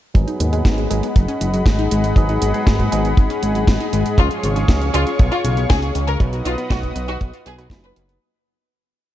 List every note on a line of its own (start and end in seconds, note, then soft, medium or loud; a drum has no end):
0.15 0.26 G#1 medium
0.15 0.50 F#3 medium
0.15 0.21 G#3 medium
0.15 0.50 B3 medium
0.15 0.50 D#4 medium
0.15 6.16 G#4 medium
0.15 0.50 G#4 medium
0.15 4.14 D#5 medium
0.15 4.14 F#5 medium
0.15 4.15 B5 medium
0.15 kick loud
0.15 closed hi-hat medium
0.28 0.40 D#4 medium
0.28 closed hi-hat soft
0.40 0.62 D#2 medium
0.40 0.51 G#2 medium
0.40 closed hi-hat medium
0.52 0.88 F#3 medium
0.52 0.63 G#3 medium
0.52 0.88 B3 medium
0.52 0.88 D#4 medium
0.52 0.88 G#4 medium
0.52 closed hi-hat soft
0.65 0.87 G#1 medium
0.65 0.76 G#3 medium
0.65 kick loud
0.65 snare loud
0.65 closed hi-hat medium
0.78 0.89 G#3 medium
0.78 closed hi-hat soft
0.90 1.02 G#1 medium
0.90 1.06 F#3 medium
0.90 1.03 G#3 loud
0.90 1.06 B3 medium
0.90 1.06 D#4 medium
0.90 1.06 G#4 loud
0.90 closed hi-hat medium
1.03 1.14 B3 medium
1.03 closed hi-hat soft
1.16 1.27 F#1 loud
1.16 1.22 D#4 medium
1.16 kick loud
1.16 closed hi-hat medium
1.28 1.39 C#4 loud
1.28 closed hi-hat soft
1.41 1.63 F#1 medium
1.41 1.52 G#2 medium
1.41 closed hi-hat medium
1.54 1.66 F#3 medium
1.54 closed hi-hat soft
1.66 1.88 G#1 medium
1.66 1.77 G#3 medium
1.66 kick loud
1.66 snare loud
1.66 closed hi-hat medium
1.79 1.89 D#4 loud
1.79 closed hi-hat soft
1.91 2.13 G#1 medium
1.91 2.03 G#3 loud
1.91 closed hi-hat medium
2.04 2.15 G#2 medium
2.04 closed hi-hat soft
2.16 2.38 G#1 medium
2.16 2.51 F#3 medium
2.16 2.23 G#3 medium
2.16 2.51 B3 medium
2.16 2.51 D#4 medium
2.16 2.51 G#4 medium
2.16 kick loud
2.16 closed hi-hat medium
2.29 2.41 D#4 medium
2.29 closed hi-hat soft
2.42 2.53 G#1 medium
2.42 2.52 G#2 medium
2.42 closed hi-hat medium
2.54 2.89 F#3 medium
2.54 2.65 G#3 medium
2.54 2.89 B3 medium
2.54 2.89 D#4 medium
2.54 2.89 G#4 medium
2.54 closed hi-hat soft
2.67 2.89 G#1 loud
2.67 2.78 G#3 medium
2.67 kick loud
2.67 snare loud
2.67 closed hi-hat medium
2.79 2.90 G#3 medium
2.79 kick medium
2.79 closed hi-hat soft
2.92 3.14 G#1 medium
2.92 3.07 F#3 medium
2.92 3.04 G#3 loud
2.92 3.07 B3 medium
2.92 3.07 D#4 medium
2.92 3.07 G#4 loud
2.92 closed hi-hat medium
3.05 3.15 B3 medium
3.05 closed hi-hat soft
3.17 3.28 G#1 medium
3.17 3.24 D#4 medium
3.17 kick loud
3.17 closed hi-hat medium
3.30 3.41 C#4 loud
3.30 closed hi-hat soft
3.43 3.65 G#1 medium
3.43 3.53 G#2 medium
3.43 closed hi-hat medium
3.55 3.67 F#3 medium
3.55 closed hi-hat soft
3.67 3.79 G#1 medium
3.67 3.79 G#3 medium
3.67 kick loud
3.67 snare loud
3.67 closed hi-hat medium
3.80 3.91 D#4 loud
3.80 closed hi-hat soft
3.93 4.04 G#1 medium
3.93 4.05 G#3 loud
3.93 closed hi-hat medium
4.06 4.16 G#2 medium
4.06 closed hi-hat soft
4.18 4.29 C#2 loud
4.18 4.53 F3 medium
4.18 4.53 G#3 medium
4.18 4.25 C#4 medium
4.18 4.53 C#4 medium
4.18 4.26 F4 medium
4.18 4.53 G#4 medium
4.18 6.18 C#5 medium
4.18 6.18 F5 medium
4.18 6.18 C#6 medium
4.18 kick loud
4.18 closed hi-hat medium
4.31 4.43 G#4 medium
4.31 closed hi-hat soft
4.43 4.65 G#1 medium
4.43 4.54 C#3 medium
4.43 closed hi-hat medium
4.56 4.91 F3 medium
4.56 4.91 G#3 medium
4.56 4.67 C#4 medium
4.56 4.91 C#4 medium
4.56 4.91 G#4 medium
4.56 closed hi-hat soft
4.68 4.90 C#2 medium
4.68 4.79 C#4 medium
4.68 kick loud
4.68 snare loud
4.68 closed hi-hat medium
4.81 4.92 C#4 medium
4.81 closed hi-hat soft
4.94 5.05 C#2 medium
4.94 5.09 F3 medium
4.94 5.09 G#3 medium
4.94 5.06 C#4 loud
4.94 5.09 C#4 medium
4.94 5.02 F4 loud
4.94 5.09 G#4 loud
4.94 closed hi-hat medium
5.06 5.17 F4 medium
5.06 closed hi-hat soft
5.19 5.30 B1 medium
5.19 5.26 G#4 medium
5.19 kick loud
5.19 closed hi-hat medium
5.32 5.42 F4 loud
5.32 5.40 F4 medium
5.32 closed hi-hat soft
5.44 5.66 B1 medium
5.44 5.55 C#3 medium
5.44 closed hi-hat medium
5.57 5.69 B3 medium
5.57 closed hi-hat soft
5.70 5.92 C#2 medium
5.70 5.80 C#4 medium
5.70 5.78 G#4 medium
5.70 kick loud
5.70 snare loud
5.70 closed hi-hat medium
5.82 5.93 G#4 loud
5.82 closed hi-hat soft
5.95 6.17 C#2 medium
5.95 6.07 C#4 loud
5.95 closed hi-hat medium
6.07 6.18 C#3 medium
6.07 6.15 A#4 medium
6.07 closed hi-hat soft
6.20 6.42 B1 medium
6.20 6.55 F#3 medium
6.20 6.26 B3 medium
6.20 6.55 B3 medium
6.20 6.55 D#4 medium
6.20 8.20 B4 medium
6.20 6.55 B4 medium
6.20 8.20 D#5 medium
6.20 8.20 F#5 medium
6.20 8.20 D#6 medium
6.20 kick loud
6.20 closed hi-hat medium
6.33 6.45 F#4 medium
6.33 closed hi-hat soft
6.45 6.56 B1 medium
6.45 6.56 B2 medium
6.45 6.53 F4 medium
6.45 closed hi-hat medium
6.58 6.93 F#3 medium
6.58 6.69 B3 medium
6.58 6.93 B3 medium
6.58 6.93 D#4 medium
6.58 6.93 B4 medium
6.58 closed hi-hat soft
6.70 6.92 B1 loud
6.70 6.81 B3 medium
6.70 6.78 F#4 medium
6.70 kick loud
6.70 snare loud
6.70 closed hi-hat medium
6.83 6.94 B3 medium
6.83 kick medium
6.83 closed hi-hat soft
6.95 7.17 B1 medium
6.95 7.11 F#3 medium
6.95 7.08 B3 loud
6.95 7.11 B3 medium
6.95 7.11 D#4 medium
6.95 7.11 B4 loud
6.95 closed hi-hat medium
7.08 7.19 D#4 medium
7.08 7.16 F#4 medium
7.08 closed hi-hat soft
7.21 7.32 B1 medium
7.21 7.27 F#4 medium
7.21 kick loud
7.21 closed hi-hat medium
7.34 7.44 F4 loud
7.34 closed hi-hat soft
7.46 7.68 B1 medium
7.46 7.54 G#4 medium
7.46 7.57 B4 loud
7.46 closed hi-hat medium
7.58 7.68 F#3 medium
7.58 7.68 B3 medium
7.58 7.68 D#4 medium
7.58 7.65 F#4 loud
7.58 7.68 B4 loud
7.58 closed hi-hat soft
7.70 7.93 F#1 loud
7.70 8.19 F#3 medium
7.70 8.19 B3 medium
7.70 8.19 D#4 medium
7.70 7.82 F4 medium
7.70 8.19 B4 medium
7.70 kick loud
7.70 snare loud
7.70 closed hi-hat medium
7.84 7.92 B4 medium
7.84 7.90 B4 medium
7.84 closed hi-hat soft
7.96 8.18 F#1 medium
7.96 8.07 A#3 medium
7.96 closed hi-hat medium
8.09 8.20 B3 medium
8.09 closed hi-hat soft